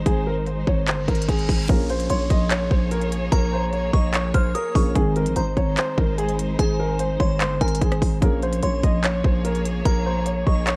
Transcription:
Already playing: D#3 G#3 C4 D#4 G#4 C5
0.06 G#1 G#4, kick, closed hi-hat
0.27 A#4
0.46 C5, closed hi-hat
0.67 G#1 C#5, kick
0.87 G1 C5, clap, closed hi-hat, reverse cymbal
1.08 G#1 A#4, kick, closed hi-hat
1.15 closed hi-hat
1.22 closed hi-hat
1.28 G#1 G#4, kick, closed hi-hat
1.39 closed hi-hat
1.49 G#1, kick, open hi-hat
1.68 A#1 F3 A#3 C#4 G#4 A#4 C#5, kick, closed hi-hat, downlifter
1.90 C5, closed hi-hat
2.00 closed hi-hat
2.10 A#1 C#5 C6, closed hi-hat
2.30 A#1 D#5, kick, closed hi-hat
2.51 C#5, clap, closed hi-hat
2.71 A#1 C5, kick
2.91 A#4, closed hi-hat
3.02 closed hi-hat
3.12 closed hi-hat
3.32 A#1 A#4 A#5, kick, closed hi-hat
3.53 C5
3.73 C#5, closed hi-hat
3.93 A#1 D#5 C#6, kick
4.14 C#5, clap, closed hi-hat
4.34 A#1 C5 F6, kick, closed hi-hat
4.55 A#4 D#6, closed hi-hat
4.75 A#1 F3 A#3 C#4 G#4 C#6, kick, open hi-hat
4.94 G#1 D#3 G#3 C4 D#4 G#4 C5, kick, closed hi-hat
5.16 A#4, closed hi-hat
5.26 A#1, closed hi-hat
5.36 G#1 C5 A#5, closed hi-hat
5.57 G#1 C#5, kick, closed hi-hat
5.77 C5, clap, closed hi-hat
5.98 G#1 A#4, kick
6.18 G#4, closed hi-hat
6.28 closed hi-hat
6.39 closed hi-hat
6.59 G#1 G#4 G#5, kick, closed hi-hat
6.80 A#4
6.99 C5, closed hi-hat
7.20 G#1 C#5 C6, kick
7.41 G1 C5, clap, closed hi-hat
7.61 G#1 A#4 G#5, kick, closed hi-hat
7.68 closed hi-hat
7.75 closed hi-hat
7.81 G#1 G#4, kick, closed hi-hat
7.92 cross-stick, closed hi-hat
8.02 G#1, kick, open hi-hat
8.21 A#1 F3 A#3 C#4 G#4 A#4 C#5, kick, closed hi-hat
8.43 C5, closed hi-hat
8.53 closed hi-hat
8.63 A#1 C#5 C6, closed hi-hat
8.83 A#1 D#5, kick, closed hi-hat
9.04 C#5, clap, closed hi-hat
9.24 A#1 C5, kick
9.45 A#4, closed hi-hat
9.55 closed hi-hat
9.65 closed hi-hat
9.85 A#1 A#4 A#5, kick, closed hi-hat
10.06 C5
10.26 C#5, closed hi-hat
10.47 A#1 D#5 C#6, kick
10.67 C#5, clap, closed hi-hat

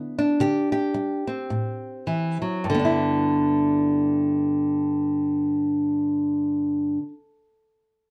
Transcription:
Already playing: D3 B3 D4 E4
0.19 D4
0.40 D3 G4
0.72 G4
0.94 G3
1.27 C4
1.50 A2
2.07 E3
2.42 F#3
2.64 G2
2.70 D3
2.75 B3
2.79 D4
2.85 E4

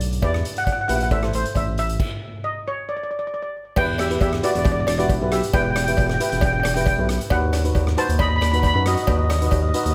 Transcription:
Already playing: B1
0.01 closed hi-hat
0.13 closed hi-hat
0.22 E2 E4 G4 B4 D5, kick, closed hi-hat, cowbell
0.34 cross-stick
0.45 closed hi-hat
0.56 F#5, closed hi-hat
0.64 F#5, kick, closed hi-hat, cowbell
0.72 F#5
0.81 F#5
0.88 A#1 E4 G4 B4 F#5, closed hi-hat
0.96 F#5
1.00 F#5, closed hi-hat
1.11 A1 E4 A4 C5 E5, kick, closed hi-hat, cowbell
1.23 E4 A4 C5, cross-stick
1.33 A1 C5, closed hi-hat
1.45 closed hi-hat
1.55 A1 E5, kick, closed hi-hat, cowbell
1.67 A1
1.78 E5, closed hi-hat
1.89 closed hi-hat
2.00 kick, crash
2.44 D#5
2.68 C#5
2.89 D5
2.97 D5
3.04 D5
3.11 D5
3.19 D5
3.27 D5
3.34 D5
3.42 D5
3.76 E1 E4 G4 B4 G5, kick, crash, cowbell
3.98 G4 E5, cross-stick, closed hi-hat, cowbell
4.10 E4 G4 B4, closed hi-hat
4.21 E1 G4 E5, kick, closed hi-hat, cowbell
4.33 cross-stick
4.43 E4 F#4 G4 B4 D5, closed hi-hat
4.51 D5
4.55 E1 D5, closed hi-hat
4.65 D5, kick, closed hi-hat, cowbell
4.72 D5
4.80 D5
4.87 E1 D5, cross-stick, closed hi-hat, cowbell
4.98 E4 F#4 G4 B4 D5, closed hi-hat
5.09 kick, closed hi-hat, cowbell
5.21 B1 E4 G4 B4
5.32 G4 E5, cross-stick, closed hi-hat
5.43 closed hi-hat
5.53 E1 E4 G4 B4 G5, kick, closed hi-hat, cowbell
5.62 G5
5.71 G5
5.76 G5, cross-stick, closed hi-hat, cowbell
5.84 E4 G4 G5, closed hi-hat
5.88 B4
5.92 G5
5.97 E1 G5, kick, closed hi-hat, cowbell
6.07 G5, cross-stick
6.14 G5
6.20 E4 G4 B4 G5, closed hi-hat
6.30 E1 G5, closed hi-hat
6.37 G5
6.41 G5, kick, closed hi-hat, cowbell
6.53 G5
6.60 G5, cowbell
6.65 E1 G5, cross-stick, closed hi-hat
6.74 E4 G4 B4 G5, closed hi-hat
6.81 G5
6.86 G5, kick, closed hi-hat, cowbell
6.98 B1 E4 G4 B4
7.09 cross-stick, closed hi-hat
7.21 closed hi-hat
7.30 D#2 D#4 F#4 B4 F#5, kick, closed hi-hat, cowbell
7.53 cross-stick, closed hi-hat, cowbell
7.64 D#4 F#4 B4, closed hi-hat
7.75 D#2, kick, closed hi-hat, cowbell
7.87 cross-stick
7.97 D#4 F#4 B4 C5 A5, closed hi-hat
8.09 D#2, closed hi-hat
8.19 D#5 B5, kick, closed hi-hat, cowbell
8.29 B5
8.36 B5
8.41 D#2 B5, cross-stick, closed hi-hat, cowbell
8.52 D#4 F#4 B4 B5, closed hi-hat
8.59 B5, cowbell
8.64 B5, kick, closed hi-hat
8.74 F#2 D#4 F#4 B4 B5
8.86 F#4 D#5, cross-stick, closed hi-hat
8.95 D#5, closed hi-hat
9.03 D#5
9.07 D#2 D#4 F#4 B4 D#5, kick, closed hi-hat, cowbell
9.17 D#5
9.24 D#5
9.30 D#5, cross-stick, closed hi-hat, cowbell
9.39 D#4 F#4 B4 D#5, closed hi-hat
9.46 D#5
9.51 D#2 D#5, kick, closed hi-hat, cowbell
9.62 D#5
9.69 D#5
9.74 D#4 F#4 B4 D#5, closed hi-hat
9.84 D#2 D#5, closed hi-hat
9.91 D#5

